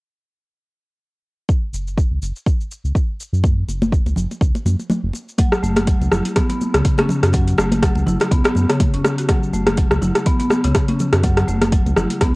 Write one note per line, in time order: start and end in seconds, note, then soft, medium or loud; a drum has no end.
1.49 kick loud
1.49 cabasa soft
1.73 2.06 F#1 medium
1.73 cabasa medium
1.87 cabasa soft
1.98 kick loud
1.98 cabasa soft
2.11 2.19 C#2 medium
2.22 2.32 F#1 loud
2.22 cabasa medium
2.36 cabasa soft
2.46 kick loud
2.46 cabasa soft
2.61 cabasa soft
2.71 cabasa medium
2.84 2.92 C#2 medium
2.84 cabasa soft
2.95 kick loud
2.95 cabasa soft
3.20 cabasa medium
3.33 3.64 F#2 loud
3.33 cabasa soft
3.44 kick loud
3.44 muted conga soft
3.44 high conga medium
3.44 cabasa medium
3.68 4.01 F#1 loud
3.68 muted conga soft
3.68 cabasa medium
3.82 high conga loud
3.82 cabasa soft
3.92 kick loud
3.92 cabasa soft
4.06 4.14 C#2 loud
4.06 muted conga medium
4.06 cabasa soft
4.16 4.27 F#1 loud
4.16 low conga loud
4.16 cabasa medium
4.31 muted conga soft
4.31 cabasa soft
4.41 4.52 C#2 medium
4.41 kick loud
4.41 cabasa medium
4.55 muted conga medium
4.55 cabasa soft
4.65 4.76 F#2 medium
4.65 high conga medium
4.65 low conga medium
4.65 cabasa medium
4.79 muted conga soft
4.79 cabasa soft
4.90 high conga medium
4.90 low conga medium
4.90 cabasa medium
5.03 5.12 F#1 medium
5.13 muted conga soft
5.13 cabasa medium
5.29 cabasa soft
5.38 5.51 F#3 medium
5.38 kick loud
5.38 closed hi-hat medium
5.38 muted conga medium
5.38 high conga medium
5.38 cabasa medium
5.52 cross-stick medium
5.52 cabasa soft
5.63 5.96 F#1 loud
5.63 5.70 A3 medium
5.63 muted conga soft
5.63 cabasa medium
5.76 cross-stick medium
5.76 closed hi-hat soft
5.76 high conga loud
5.76 cabasa soft
5.87 5.95 F#3 medium
5.87 kick loud
5.87 closed hi-hat medium
5.87 cabasa soft
6.01 6.09 C#2 loud
6.01 muted conga medium
6.01 cabasa soft
6.12 6.22 F#1 loud
6.12 6.25 E4 medium
6.12 cross-stick medium
6.12 low conga loud
6.12 cabasa medium
6.25 closed hi-hat soft
6.25 muted conga soft
6.25 cabasa soft
6.36 6.48 B3 loud
6.36 kick loud
6.36 cross-stick medium
6.36 closed hi-hat medium
6.36 low conga medium
6.36 cabasa soft
6.50 6.60 B3 medium
6.50 closed hi-hat soft
6.50 muted conga medium
6.50 cabasa soft
6.61 high conga medium
6.61 cabasa medium
6.74 6.82 C#2 medium
6.74 6.84 C#3 loud
6.74 cross-stick medium
6.74 closed hi-hat soft
6.74 muted conga soft
6.74 cabasa soft
6.85 kick loud
6.85 closed hi-hat medium
6.85 cabasa soft
6.98 7.08 C#4 medium
6.98 cross-stick medium
6.98 closed hi-hat soft
6.98 high conga medium
7.09 muted conga medium
7.09 low conga medium
7.09 cabasa medium
7.23 7.54 F#2 loud
7.23 7.29 F#4 medium
7.23 cross-stick medium
7.23 closed hi-hat soft
7.23 cabasa soft
7.33 7.46 F#3 medium
7.33 kick loud
7.33 closed hi-hat medium
7.33 muted conga soft
7.33 high conga medium
7.33 cabasa medium
7.48 closed hi-hat soft
7.48 cabasa soft
7.58 7.91 F#1 loud
7.58 7.66 A3 medium
7.58 cross-stick loud
7.58 muted conga soft
7.58 cabasa medium
7.72 closed hi-hat soft
7.72 high conga loud
7.72 cabasa soft
7.82 7.90 F#3 medium
7.82 kick loud
7.82 cross-stick medium
7.82 closed hi-hat medium
7.82 cabasa medium
7.95 8.04 C#2 loud
7.95 muted conga soft
7.95 cabasa soft
8.06 8.17 F#1 loud
8.06 8.20 E4 medium
8.06 low conga loud
8.06 cabasa medium
8.20 cross-stick medium
8.20 closed hi-hat soft
8.20 muted conga soft
8.20 cabasa soft
8.31 8.42 C#2 medium
8.31 8.43 B3 loud
8.31 kick loud
8.31 closed hi-hat medium
8.31 cabasa medium
8.44 8.54 B3 loud
8.44 cross-stick loud
8.44 closed hi-hat soft
8.44 muted conga medium
8.44 cabasa soft
8.55 8.66 F#2 medium
8.55 high conga medium
8.55 cabasa medium
8.69 8.79 C#3 loud
8.69 cross-stick medium
8.69 closed hi-hat soft
8.69 muted conga soft
8.69 cabasa soft
8.80 kick loud
8.80 closed hi-hat medium
8.80 high conga medium
8.80 low conga medium
8.80 cabasa medium
8.94 9.02 F#1 medium
8.94 9.03 C#4 medium
8.94 closed hi-hat soft
9.05 cross-stick medium
9.05 muted conga medium
9.05 cabasa loud
9.18 9.24 F#4 medium
9.18 closed hi-hat soft
9.18 cabasa soft
9.29 9.41 F#3 loud
9.29 kick loud
9.29 cross-stick medium
9.29 closed hi-hat medium
9.29 muted conga medium
9.29 high conga medium
9.29 cabasa medium
9.43 cabasa soft
9.53 9.86 F#1 loud
9.53 9.61 A3 medium
9.53 muted conga soft
9.53 cabasa medium
9.67 cross-stick medium
9.67 closed hi-hat soft
9.67 high conga loud
9.67 cabasa soft
9.77 9.85 F#3 medium
9.77 kick loud
9.77 closed hi-hat medium
9.77 cabasa medium
9.91 9.99 C#2 loud
9.91 cross-stick medium
9.91 muted conga medium
9.91 cabasa soft
10.02 10.12 F#1 loud
10.02 10.15 E4 medium
10.02 low conga loud
10.02 cabasa medium
10.15 cross-stick medium
10.15 closed hi-hat soft
10.15 muted conga soft
10.15 cabasa soft
10.26 10.39 B3 loud
10.26 kick loud
10.26 closed hi-hat soft
10.26 low conga medium
10.26 cabasa medium
10.40 10.50 B3 loud
10.40 closed hi-hat soft
10.40 muted conga soft
10.40 cabasa soft
10.50 cross-stick medium
10.50 high conga medium
10.50 cabasa medium
10.64 10.73 C#2 medium
10.64 10.74 C#3 loud
10.64 closed hi-hat soft
10.64 muted conga soft
10.64 cabasa soft
10.75 kick loud
10.75 cross-stick medium
10.75 closed hi-hat medium
10.75 cabasa medium
10.88 10.98 C#4 medium
10.88 closed hi-hat soft
10.88 high conga loud
11.00 muted conga soft
11.00 low conga medium
11.00 cabasa medium
11.13 11.44 F#2 loud
11.13 11.19 F#4 medium
11.13 cross-stick medium
11.13 closed hi-hat soft
11.13 cabasa soft
11.23 11.36 F#3 medium
11.23 kick loud
11.23 closed hi-hat medium
11.23 muted conga soft
11.23 high conga medium
11.23 cabasa medium
11.37 cross-stick medium
11.37 closed hi-hat soft
11.37 cabasa soft
11.47 11.81 F#1 loud
11.47 11.55 A3 medium
11.47 muted conga soft
11.47 cabasa medium
11.62 cross-stick medium
11.62 closed hi-hat soft
11.62 high conga loud
11.62 cabasa soft
11.72 11.80 F#3 medium
11.72 kick loud
11.72 closed hi-hat medium
11.72 cabasa medium
11.86 11.94 C#2 loud
11.86 muted conga soft
11.86 cabasa soft
11.96 12.07 F#1 loud
11.96 12.10 E4 medium
11.96 cross-stick medium
11.96 low conga medium
11.96 cabasa medium
12.10 closed hi-hat soft
12.10 muted conga soft
12.10 cabasa soft
12.21 12.32 C#2 medium
12.21 12.34 B3 loud
12.21 kick loud
12.21 cross-stick medium
12.21 closed hi-hat medium
12.21 cabasa medium